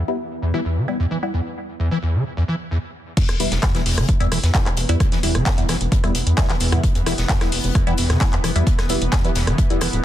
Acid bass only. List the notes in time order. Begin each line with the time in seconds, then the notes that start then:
0.42 E2
0.54 E3
0.65 E2
0.77 D3
1.00 E2
1.11 E3
1.34 E2
1.80 E2
1.91 E3
2.03 E2
2.14 D3
2.37 E2
2.48 E3
2.71 E2
3.17 E2
3.63 E2
3.75 E3
3.86 E2
3.97 D3
4.20 E2
4.31 E3
4.54 E2
5.00 E2
5.12 E3
5.23 E2
5.35 D3
5.58 E2
5.69 E3
5.92 E2
6.38 E2
6.50 E3
6.61 E2
6.72 D3
6.95 E2
7.06 E3
7.29 E2
7.75 E2
7.87 E3
7.98 E2
8.10 D3
8.33 E2
8.44 E3
8.67 E2
9.13 E2
9.24 E3
9.35 E2
9.47 D3
9.70 E2
9.81 E3